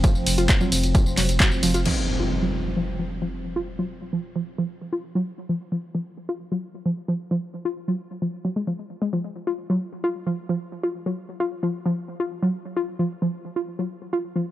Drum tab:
CC |----------------|x---------------|----------------|----------------|
RD |x-x-x-x-x-x-x-x-|----------------|----------------|----------------|
HH |x-oxx-oxx-oxx-ox|----------------|----------------|----------------|
TB |xxxxxxxxxxxxxxxx|----------------|----------------|----------------|
CP |----x-----x-x---|----------------|----------------|----------------|
BD |o---o---o---o---|----------------|----------------|----------------|

CC |----------------|----------------|----------------|----------------|
RD |----------------|----------------|----------------|----------------|
HH |----------------|----------------|----------------|----------------|
TB |----------------|----------------|----------------|----------------|
CP |----------------|----------------|----------------|----------------|
BD |----------------|----------------|----------------|----------------|